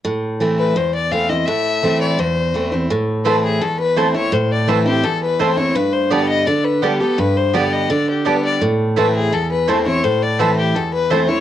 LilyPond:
<<
  \new Staff \with { instrumentName = "Fiddle" } { \time 4/4 \key a \minor \tempo 4 = 168 r4. b'8 c''8 d''8 f''8 dis''8 | e''4. d''8 c''4. r8 | r4 b'8 gis'8 a'8 b'8 c''8 cis''8 | c''8 d''8 b'8 g'8 a'8 b'8 c''8 cis''8 |
b'8 c''8 d''8 dis''8 d''8 b'8 g'8 a'8 | b'8 c''8 d''8 dis''8 d''8 g'8 b'8 d''8 | r4 b'8 gis'8 a'8 b'8 c''8 cis''8 | c''8 d''8 b'8 g'8 a'8 b'8 c''8 cis''8 | }
  \new Staff \with { instrumentName = "Mandolin" } { \time 4/4 \key a \minor r1 | r1 | r4 <a e' c'' a''>16 r4. r16 <a e' c'' a''>16 r8. | r4 <a e' c'' a''>16 r4. r16 <a e' c'' a''>16 r8. |
r4 <b g' d'' a''>16 r4. r16 <b g' d'' a''>16 r8. | r4 <b g' d'' a''>16 r4. r16 <b g' d'' a''>16 r8. | r4 <a e' c'' a''>16 r4. r16 <a e' c'' a''>16 r8. | r4 <a e' c'' a''>16 r4. r16 <a e' c'' a''>16 r8. | }
  \new Staff \with { instrumentName = "Steel-string acoustic guitar" } { \time 4/4 \key a \minor << { r4 <e a c' e'>4 r4 <e a c' e'>8 <c' e'>8 | r4 <e a c' e'>4 r4 <e a c' e'>8 <c' e'>8 | r4 <e a c' e'>4 r4 <e a c' e'>8 <c' e'>8 | r4 <e a c' e'>8 <c' e'>8 r4 <e a c' e'>8 <c' e'>8 |
r4 <d g b g'>4 r4 <d g b g'>8 <b g'>8 | r4 <d g b g'>4 r4 <d g b g'>4 | r4 <e a c' e'>4 r4 <e a c' e'>8 <c' e'>8 | r4 <e a c' e'>4 r4 <e a c' e'>8 <c' e'>8 | } \\ { a,2 e,2 | a,2 e,2 | a,2 e,2 | a,2 e,2 |
g,2 d2 | g,2 d2 | a,2 e,2 | a,2 e,2 | } >> }
>>